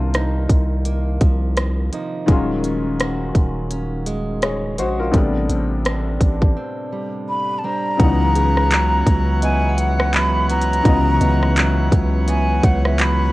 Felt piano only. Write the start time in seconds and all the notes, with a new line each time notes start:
Already playing: D#3 A#3 C4 D4 F4
2.26 D#3 F#3 G#3
2.30 C#4 F4
4.43 G#4 C#5
4.79 F#4 C5
4.99 F4 A#4
5.12 C3 G3 A3
5.16 B3 D4
7.97 C#3 E3 F#3
8.02 B3 D#4
10.83 C#3 E3 F#3
10.87 B3 D#5